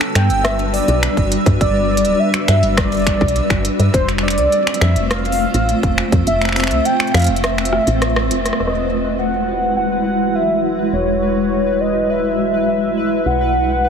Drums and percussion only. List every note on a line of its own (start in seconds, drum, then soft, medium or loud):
0.01 finger snap medium
0.15 finger snap medium
0.15 closed hi-hat medium
0.30 closed hi-hat soft
0.45 cross-stick loud
0.45 closed hi-hat soft
0.59 closed hi-hat soft
0.74 open hi-hat medium
0.88 closed hi-hat medium
1.03 finger snap medium
1.03 closed hi-hat soft
1.17 kick medium
1.17 closed hi-hat soft
1.32 closed hi-hat medium
1.46 kick loud
1.46 closed hi-hat medium
1.61 kick loud
1.61 closed hi-hat soft
1.97 closed hi-hat medium
2.05 closed hi-hat soft
2.34 finger snap medium
2.34 closed hi-hat soft
2.48 finger snap medium
2.48 closed hi-hat medium
2.63 closed hi-hat soft
2.77 finger snap medium
2.77 kick loud
2.77 cross-stick loud
2.77 closed hi-hat soft
2.92 closed hi-hat soft
2.94 closed hi-hat soft
2.97 closed hi-hat soft
2.99 closed hi-hat soft
3.02 closed hi-hat soft
3.04 finger snap medium
3.04 kick medium
3.04 closed hi-hat soft
3.07 closed hi-hat medium
3.21 kick loud
3.28 closed hi-hat soft
3.36 closed hi-hat soft
3.50 finger snap medium
3.50 kick medium
3.50 closed hi-hat soft
3.65 closed hi-hat medium
3.80 closed hi-hat medium
3.94 kick loud
3.94 closed hi-hat medium
4.09 finger snap soft
4.09 closed hi-hat soft
4.18 finger snap soft
4.28 finger snap soft
4.28 closed hi-hat medium
4.38 closed hi-hat medium
4.52 closed hi-hat soft
4.67 finger snap medium
4.67 closed hi-hat soft
4.74 closed hi-hat medium
4.81 finger snap medium
4.96 closed hi-hat medium
5.11 cross-stick loud
5.11 closed hi-hat soft
5.25 closed hi-hat soft
5.32 open hi-hat medium
5.54 closed hi-hat medium
5.69 closed hi-hat medium
5.83 kick medium
5.83 closed hi-hat soft
5.98 finger snap medium
6.12 kick loud
6.12 closed hi-hat medium
6.27 closed hi-hat medium
6.41 finger snap soft
6.41 closed hi-hat soft
6.45 finger snap soft
6.49 finger snap soft
6.52 finger snap soft
6.56 finger snap soft
6.56 open hi-hat medium
6.60 finger snap soft
6.64 finger snap medium
6.67 finger snap medium
6.67 closed hi-hat medium
6.85 closed hi-hat medium
7.00 finger snap medium
7.07 closed hi-hat soft
7.14 finger snap medium
7.14 closed hi-hat soft
7.17 closed hi-hat medium
7.19 closed hi-hat medium
7.22 closed hi-hat medium
7.24 closed hi-hat medium
7.27 closed hi-hat medium
7.36 closed hi-hat medium
7.44 cross-stick loud
7.44 closed hi-hat medium
7.58 finger snap medium
7.58 closed hi-hat soft
7.65 closed hi-hat loud
7.73 cross-stick medium
7.87 closed hi-hat medium
8.02 cross-stick medium
8.02 closed hi-hat medium
8.16 cross-stick medium
8.31 closed hi-hat loud
8.46 cross-stick soft
8.46 closed hi-hat medium
8.53 cross-stick medium
8.60 cross-stick medium
8.67 cross-stick medium